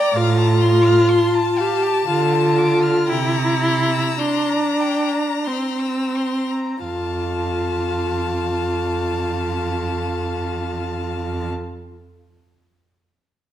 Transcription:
Already playing: viola D5, violin G5 A#5
0.15 cello A2, viola F4, violin F5
0.38 violin A5
0.61 violin C6
0.85 violin F6
1.10 violin A5 C6
1.35 violin A5
1.58 viola G4, violin F5
1.83 violin A5
2.07 cello D3, viola F4, violin F5
2.33 violin A5
2.58 violin D6
2.83 violin F6
3.09 cello C3, viola E4, violin G5 A#5
3.36 violin A#5
3.63 violin C6
3.91 violin E6
4.20 viola D4, violin C6
4.49 violin A#5
4.81 violin G5
5.13 violin A#5
5.45 viola C4, violin C6
5.80 violin E6
6.16 violin C6
6.51 violin A#5
6.84 cello F2, viola F4, violin F5 A5

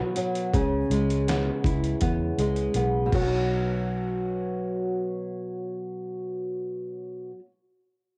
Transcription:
Already playing: nylon-string guitar B2 F#3 B3 D#4
0.16 nylon-string guitar F#3, closed hi-hat
0.35 closed hi-hat
0.53 fingered electric bass C#2, nylon-string guitar C#3, kick, closed hi-hat
0.90 fingered electric bass C#2, nylon-string guitar G#3, closed hi-hat
1.10 closed hi-hat
1.28 nylon-string guitar B3, snare, closed hi-hat
1.64 fingered electric bass C#2, nylon-string guitar E4, kick, closed hi-hat
1.84 closed hi-hat
2.01 fingered electric bass E2, nylon-string guitar B3, kick, closed hi-hat
2.38 fingered electric bass C#2, nylon-string guitar G#3, closed hi-hat
2.56 closed hi-hat
2.74 fingered electric bass B1, nylon-string guitar B3, closed hi-hat
3.06 nylon-string guitar B2
3.12 fingered electric bass B1, nylon-string guitar F#3, kick, crash
3.20 nylon-string guitar B3
3.26 nylon-string guitar D#4

